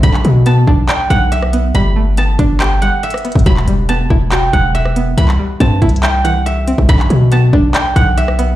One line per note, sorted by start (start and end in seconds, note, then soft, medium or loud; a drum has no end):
0.00 0.24 B1 loud
0.00 1.09 D3 medium
0.00 1.31 E5 medium
0.00 0.95 F#5 medium
0.00 0.19 A5 medium
0.00 1.38 B5 loud
0.00 kick loud
0.00 closed hi-hat medium
0.14 clap medium
0.25 0.66 B2 loud
0.25 1.32 F#3 medium
0.25 closed hi-hat medium
0.46 1.52 B3 medium
0.46 1.91 A5 medium
0.46 closed hi-hat medium
0.67 0.88 B1 loud
0.67 1.75 D4 loud
0.67 kick loud
0.89 1.75 D5 medium
0.89 1.16 G5 medium
0.89 clap loud
0.89 closed hi-hat medium
1.10 1.72 B1 loud
1.10 1.75 D3 medium
1.10 2.66 F#5 medium
1.10 kick medium
1.10 closed hi-hat medium
1.32 3.03 E5 medium
1.32 closed hi-hat medium
1.42 cross-stick medium
1.53 1.75 B3 medium
1.53 closed hi-hat medium
1.75 2.36 G1 loud
1.75 2.81 G3 loud
1.75 3.10 B5 loud
1.75 closed hi-hat medium
1.96 3.03 A3 medium
2.17 3.24 B3 medium
2.17 3.63 A5 medium
2.17 closed hi-hat medium
2.39 2.90 G1 loud
2.39 3.46 D4 loud
2.39 kick loud
2.39 closed hi-hat medium
2.60 3.46 G4 medium
2.60 2.88 G5 medium
2.60 clap loud
2.60 closed hi-hat medium
2.82 3.46 G3 medium
2.82 4.38 F#5 medium
2.82 closed hi-hat medium
3.03 4.74 E5 medium
3.03 closed hi-hat medium
3.10 cross-stick medium
3.10 closed hi-hat medium
3.18 closed hi-hat medium
3.25 3.46 B3 medium
3.25 closed hi-hat medium
3.32 3.46 G1 loud
3.32 kick loud
3.32 closed hi-hat medium
3.39 closed hi-hat medium
3.46 3.67 E1 loud
3.46 4.52 F#3 loud
3.46 4.81 B5 loud
3.46 kick loud
3.46 closed hi-hat medium
3.57 clap medium
3.67 4.09 E1 loud
3.67 4.75 G3 medium
3.67 closed hi-hat medium
3.89 4.95 B3 medium
3.89 5.34 A5 medium
3.89 closed hi-hat medium
4.10 4.52 E1 loud
4.10 5.17 E4 loud
4.10 kick loud
4.32 5.18 F#4 medium
4.32 4.59 G5 medium
4.32 clap loud
4.32 closed hi-hat medium
4.53 5.15 E1 loud
4.53 5.17 F#3 medium
4.53 6.09 F#5 medium
4.53 kick medium
4.53 closed hi-hat medium
4.75 6.46 E5 medium
4.75 closed hi-hat medium
4.85 cross-stick medium
4.96 5.18 B3 medium
4.96 closed hi-hat medium
5.17 5.38 C2 loud
5.17 6.23 E3 medium
5.17 6.53 B5 loud
5.17 closed hi-hat medium
5.28 clap medium
5.39 6.46 G3 medium
5.60 5.81 G2 loud
5.60 6.66 C4 medium
5.60 7.05 A5 medium
5.60 kick medium
5.60 closed hi-hat medium
5.82 6.74 C2 loud
5.82 6.89 E4 loud
5.82 kick loud
5.82 closed hi-hat soft
5.89 closed hi-hat medium
5.96 closed hi-hat medium
6.03 6.89 E5 medium
6.03 6.30 G5 medium
6.03 clap loud
6.03 closed hi-hat medium
6.24 6.89 E3 medium
6.24 7.81 F#5 medium
6.24 closed hi-hat medium
6.46 8.17 E5 medium
6.46 closed hi-hat medium
6.68 6.89 C4 medium
6.68 closed hi-hat medium
6.78 6.88 C2 loud
6.78 kick loud
6.89 7.09 B1 loud
6.89 7.95 D3 medium
6.89 8.24 B5 loud
6.89 kick loud
6.89 closed hi-hat medium
7.00 clap medium
7.10 7.51 B2 loud
7.10 8.18 F#3 medium
7.10 closed hi-hat medium
7.32 8.38 B3 medium
7.32 8.56 A5 medium
7.32 closed hi-hat medium
7.53 7.74 B1 loud
7.53 8.56 D4 loud
7.53 kick loud
7.74 8.56 D5 medium
7.74 8.02 G5 medium
7.74 clap loud
7.74 closed hi-hat medium
7.96 8.56 B1 loud
7.96 8.56 D3 medium
7.96 8.56 F#5 medium
7.96 kick medium
7.96 closed hi-hat medium
8.17 8.56 E5 medium
8.17 closed hi-hat medium
8.28 cross-stick medium
8.39 8.56 B3 medium
8.39 closed hi-hat medium